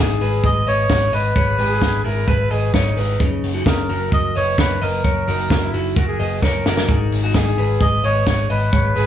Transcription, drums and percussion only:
0.21 open hi-hat
0.44 kick, closed hi-hat
0.67 open hi-hat
0.89 kick, snare, closed hi-hat
1.13 open hi-hat
1.36 kick, closed hi-hat
1.59 open hi-hat
1.82 kick, snare
2.05 open hi-hat
2.28 kick, closed hi-hat
2.51 open hi-hat
2.74 kick, snare, closed hi-hat
2.97 open hi-hat
3.20 kick, closed hi-hat
3.44 open hi-hat
3.66 kick, snare, closed hi-hat
3.90 open hi-hat
4.12 kick, closed hi-hat
4.36 open hi-hat
4.58 kick, snare, closed hi-hat
4.82 open hi-hat
5.04 kick, closed hi-hat
5.28 open hi-hat
5.50 kick, snare, closed hi-hat
5.74 open hi-hat
5.96 kick, closed hi-hat
6.20 open hi-hat
6.42 kick, snare
6.66 snare
6.77 snare
6.88 kick, closed hi-hat
7.12 open hi-hat
7.34 kick, snare, closed hi-hat
7.58 open hi-hat
7.81 kick, closed hi-hat
8.04 open hi-hat
8.26 kick, snare, closed hi-hat
8.50 open hi-hat
8.73 kick, closed hi-hat
8.96 open hi-hat

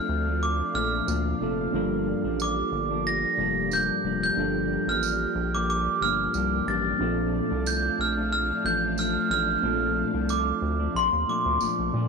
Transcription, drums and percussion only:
1.08 tambourine
2.40 tambourine
3.71 tambourine
5.03 tambourine
6.34 tambourine
7.66 tambourine
8.98 tambourine
10.29 tambourine
11.61 tambourine

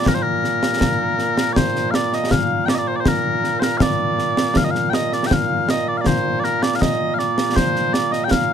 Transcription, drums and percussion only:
0.06 concert bass drum, snare
0.44 snare
0.63 snare
0.81 concert bass drum, snare
1.19 snare
1.38 snare
1.56 concert bass drum, snare
1.76 snare
1.94 snare
2.13 snare
2.31 concert bass drum, snare
2.68 snare
3.06 concert bass drum, snare
3.44 snare
3.62 snare
3.80 concert bass drum, snare
4.19 snare
4.37 snare
4.56 concert bass drum, snare
4.75 snare
4.93 snare
5.12 snare
5.31 concert bass drum, snare
5.69 snare
6.06 concert bass drum, snare
6.44 snare
6.63 snare
6.82 concert bass drum, snare
7.19 snare
7.38 snare
7.57 concert bass drum, snare
7.76 snare
7.94 snare
8.13 snare
8.31 concert bass drum, snare

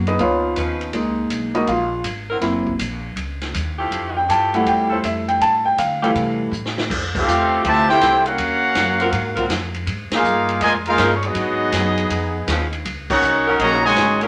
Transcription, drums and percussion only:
0.07 ride
0.19 kick, ride
0.56 kick, hi-hat pedal, ride
0.81 ride
0.93 kick, ride
1.30 kick, hi-hat pedal, ride
1.55 ride
1.67 kick, ride
2.04 kick, hi-hat pedal, ride
2.42 kick, snare, ride
2.67 kick
2.79 kick, hi-hat pedal, ride
3.17 kick, ride
3.41 snare, ride
3.54 kick, hi-hat pedal, ride
3.92 kick, ride
4.29 kick, hi-hat pedal, ride
4.54 ride
4.66 kick, ride
5.04 kick, hi-hat pedal, ride
5.28 ride
5.41 kick, ride
5.78 kick, hi-hat pedal, ride
6.04 ride
6.15 kick, ride
6.53 hi-hat pedal
6.66 snare
6.78 snare
6.90 kick, crash
7.15 kick, crash
7.28 hi-hat pedal
7.64 kick, ride
7.89 snare
8.01 kick, snare, hi-hat pedal, ride
8.26 ride
8.38 kick, ride
8.75 kick, snare, hi-hat pedal, ride
9.00 ride
9.12 kick, ride
9.37 kick, ride
9.50 kick, snare, hi-hat pedal, ride
9.74 ride
9.87 kick, ride
10.12 snare, ride
10.24 hi-hat pedal
10.49 ride
10.61 kick, ride
10.86 ride
10.98 kick, snare, hi-hat pedal, ride
11.23 ride
11.35 kick, ride
11.72 kick, snare, hi-hat pedal, ride
11.98 ride
12.10 kick, ride
12.48 kick, snare, hi-hat pedal, ride
12.73 ride
12.85 kick, ride
13.10 kick, crash
13.22 hi-hat pedal
13.60 kick, ride
13.96 kick, snare, hi-hat pedal, ride
14.21 ride

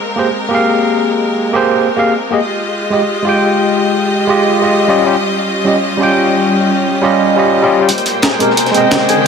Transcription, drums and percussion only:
7.89 closed hi-hat
7.98 closed hi-hat
8.06 snare, closed hi-hat
8.22 snare, closed hi-hat
8.40 closed hi-hat
8.51 snare
8.57 closed hi-hat
8.66 snare, closed hi-hat
8.74 closed hi-hat
8.91 snare, closed hi-hat
9.09 closed hi-hat

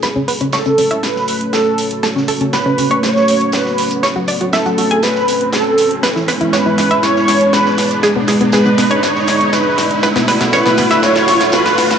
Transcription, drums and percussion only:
0.03 snare, closed hi-hat
0.28 closed hi-hat, open hi-hat
0.41 closed hi-hat
0.53 snare, closed hi-hat
0.66 closed hi-hat
0.78 closed hi-hat, open hi-hat
0.91 closed hi-hat
1.03 snare, closed hi-hat
1.16 snare
1.28 closed hi-hat, open hi-hat
1.41 closed hi-hat
1.53 snare, closed hi-hat
1.78 closed hi-hat, open hi-hat
1.91 closed hi-hat
2.03 snare, closed hi-hat
2.17 snare
2.28 closed hi-hat, open hi-hat
2.41 closed hi-hat
2.53 snare, closed hi-hat
2.78 closed hi-hat, open hi-hat
2.91 closed hi-hat
3.03 snare, closed hi-hat
3.16 snare
3.28 snare, closed hi-hat, open hi-hat
3.41 closed hi-hat
3.52 snare, closed hi-hat
3.66 snare
3.78 snare, open hi-hat
3.91 closed hi-hat
4.03 snare, closed hi-hat
4.28 closed hi-hat, open hi-hat
4.41 closed hi-hat
4.53 snare, closed hi-hat
4.66 closed hi-hat
4.78 closed hi-hat, open hi-hat
4.91 closed hi-hat
5.03 snare, closed hi-hat
5.16 snare
5.28 closed hi-hat, open hi-hat
5.41 closed hi-hat
5.53 snare, closed hi-hat
5.78 closed hi-hat, open hi-hat
5.91 closed hi-hat
6.03 snare, closed hi-hat
6.16 snare
6.28 snare, closed hi-hat, open hi-hat
6.41 closed hi-hat
6.53 snare, closed hi-hat
6.78 snare, closed hi-hat, open hi-hat
6.91 closed hi-hat
7.03 snare, closed hi-hat
7.16 snare
7.28 snare, closed hi-hat, open hi-hat
7.41 closed hi-hat
7.53 snare, closed hi-hat
7.66 snare
7.77 snare, open hi-hat
7.91 closed hi-hat
8.03 snare, closed hi-hat
8.28 snare, closed hi-hat, open hi-hat
8.41 closed hi-hat
8.52 snare, closed hi-hat
8.66 closed hi-hat
8.78 snare, closed hi-hat, open hi-hat
8.91 closed hi-hat
9.03 snare, closed hi-hat
9.16 snare
9.27 snare, closed hi-hat, open hi-hat
9.41 closed hi-hat
9.53 snare, closed hi-hat
9.78 snare, closed hi-hat, open hi-hat
9.91 closed hi-hat
10.03 snare, closed hi-hat
10.15 snare
10.28 snare, closed hi-hat, open hi-hat
10.41 snare, closed hi-hat
10.53 snare, closed hi-hat
10.66 snare
10.77 snare, closed hi-hat, open hi-hat
10.91 snare, closed hi-hat
11.03 snare, closed hi-hat
11.16 snare
11.28 snare, closed hi-hat, open hi-hat
11.41 snare, closed hi-hat
11.52 snare, closed hi-hat
11.66 snare
11.78 snare, open hi-hat
11.90 snare, closed hi-hat

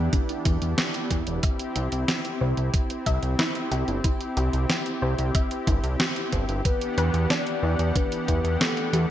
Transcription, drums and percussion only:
0.13 kick, closed hi-hat
0.29 closed hi-hat
0.45 kick, closed hi-hat
0.62 closed hi-hat
0.78 snare, closed hi-hat
0.94 closed hi-hat
1.11 kick, closed hi-hat
1.27 closed hi-hat
1.43 kick, closed hi-hat
1.59 closed hi-hat
1.76 closed hi-hat
1.92 closed hi-hat
2.08 snare, closed hi-hat
2.25 closed hi-hat
2.57 closed hi-hat
2.74 kick, closed hi-hat
2.90 closed hi-hat
3.06 kick, closed hi-hat
3.23 closed hi-hat
3.39 snare, closed hi-hat
3.55 closed hi-hat
3.72 closed hi-hat
3.88 closed hi-hat
4.04 kick, closed hi-hat
4.21 closed hi-hat
4.37 closed hi-hat
4.53 closed hi-hat
4.70 snare, closed hi-hat
4.86 closed hi-hat
5.19 closed hi-hat
5.35 kick, closed hi-hat
5.51 closed hi-hat
5.67 kick, closed hi-hat
5.84 closed hi-hat
6.00 snare, closed hi-hat
6.16 closed hi-hat
6.32 kick, closed hi-hat
6.49 closed hi-hat
6.65 kick, closed hi-hat
6.81 closed hi-hat
6.98 closed hi-hat
7.14 closed hi-hat
7.30 snare, closed hi-hat
7.47 closed hi-hat
7.79 closed hi-hat
7.96 kick, closed hi-hat
8.12 closed hi-hat
8.28 kick, closed hi-hat
8.45 closed hi-hat
8.61 snare, closed hi-hat
8.77 closed hi-hat
8.93 closed hi-hat

